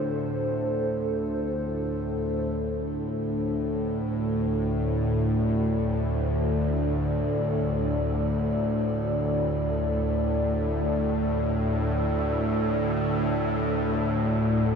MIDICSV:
0, 0, Header, 1, 4, 480
1, 0, Start_track
1, 0, Tempo, 500000
1, 14163, End_track
2, 0, Start_track
2, 0, Title_t, "Analog synth pad"
2, 0, Program_c, 0, 89
2, 0, Note_on_c, 0, 62, 62
2, 0, Note_on_c, 0, 69, 77
2, 0, Note_on_c, 0, 72, 73
2, 3459, Note_on_c, 0, 74, 70
2, 5979, Note_off_c, 0, 72, 0
2, 14163, Note_off_c, 0, 62, 0
2, 14163, Note_off_c, 0, 69, 0
2, 14163, Note_off_c, 0, 74, 0
2, 14163, End_track
3, 0, Start_track
3, 0, Title_t, "Synth texture"
3, 0, Program_c, 1, 99
3, 2456, Note_on_c, 1, 69, 70
3, 2460, Note_on_c, 1, 57, 71
3, 14163, Note_off_c, 1, 57, 0
3, 14163, Note_off_c, 1, 69, 0
3, 14163, End_track
4, 0, Start_track
4, 0, Title_t, "Synth drone"
4, 0, Program_c, 2, 95
4, 0, Note_on_c, 2, 38, 70
4, 0, Note_on_c, 2, 45, 69
4, 2447, Note_off_c, 2, 45, 0
4, 2452, Note_off_c, 2, 38, 0
4, 2458, Note_on_c, 2, 45, 74
4, 2464, Note_on_c, 2, 38, 73
4, 14163, Note_off_c, 2, 38, 0
4, 14163, Note_off_c, 2, 45, 0
4, 14163, End_track
0, 0, End_of_file